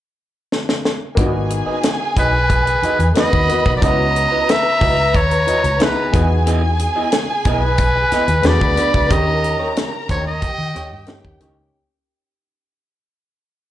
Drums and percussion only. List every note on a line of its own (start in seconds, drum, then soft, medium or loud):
0.52 snare medium
0.69 snare medium
0.85 snare medium
1.17 kick medium
1.17 closed hi-hat medium
1.50 closed hi-hat medium
1.83 snare medium
1.83 closed hi-hat medium
2.17 kick medium
2.17 closed hi-hat medium
2.50 kick medium
2.50 closed hi-hat medium
2.67 closed hi-hat soft
2.83 closed hi-hat medium
3.00 closed hi-hat soft
3.15 snare loud
3.15 closed hi-hat medium
3.33 kick medium
3.49 closed hi-hat medium
3.66 kick medium
3.82 kick loud
3.82 closed hi-hat medium
4.16 closed hi-hat medium
4.49 snare loud
4.49 closed hi-hat medium
4.81 kick medium
4.81 open hi-hat soft
5.15 kick medium
5.15 closed hi-hat medium
5.31 closed hi-hat soft
5.48 closed hi-hat medium
5.64 closed hi-hat soft
5.80 snare loud
5.80 closed hi-hat medium
6.14 kick loud
6.14 closed hi-hat medium
6.47 closed hi-hat medium
6.79 closed hi-hat medium
7.12 snare medium
7.12 closed hi-hat medium
7.45 kick medium
7.45 closed hi-hat medium
7.78 kick medium
7.78 closed hi-hat medium
8.12 snare soft
8.12 closed hi-hat medium
8.28 closed hi-hat soft
8.43 snare loud
8.43 closed hi-hat medium
8.61 kick medium
8.77 closed hi-hat medium
8.94 kick medium
9.10 kick loud
9.10 closed hi-hat medium
9.44 closed hi-hat medium
9.77 snare loud
9.77 closed hi-hat medium
10.09 kick medium
10.09 closed hi-hat medium
10.42 kick medium
10.42 closed hi-hat medium
10.76 snare soft
10.76 closed hi-hat medium
11.06 snare loud
11.06 closed hi-hat medium
11.25 kick medium
11.40 closed hi-hat medium